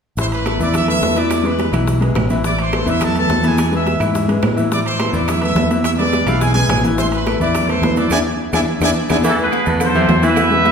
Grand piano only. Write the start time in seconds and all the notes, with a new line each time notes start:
0.18 E3 E4 E5
0.46 A3 A4 B4
0.60 E3 E4 E5
0.87 A3 A4 B4
1.03 A3 A4 B4
1.16 E3 E4 E5
1.43 G#3 G#4 B4
1.72 E3 E4 E5
2.01 G#3 G#4 B4
2.30 E3 E4 E5
2.44 E3 E4 E5
2.73 A3 A4 B4
2.86 E3 E4 E5
3.16 A3 A4 B4
3.29 A3 A4 B4
3.44 E3 E4 E5
3.71 G#3 G#4 B4
3.99 E3 E4 E5
4.28 G#3 G#4 B4
4.56 E3 E4 E5
4.71 E3 E4 E5
4.99 A3 A4 B4
5.13 E3 E4 E5
5.41 A3 A4 B4
5.56 A3 A4 B4
5.70 E3 E4 E5
5.99 G#3 G#4 B4
6.28 E3 E4 E5
6.55 G#3 G#4 B4
6.84 E3 E4 E5
6.98 E3 E4 E5
7.26 A3 A4 B4
7.41 E3 E4 E5
7.68 A3 A4 B4
7.83 A3 A4 B4
7.97 E3 E4 E5
8.11 D4 E4 G#4
8.53 D4 E4 G#4
8.81 D4 E4 G#4
9.10 D4 E4 G#4
9.24 E3 E4 E5
9.39 A3 A4 B4
9.67 A3 A4 B4
9.95 E3 E4 E5
10.23 E3 E4 E5
10.51 G#3 G#4 B4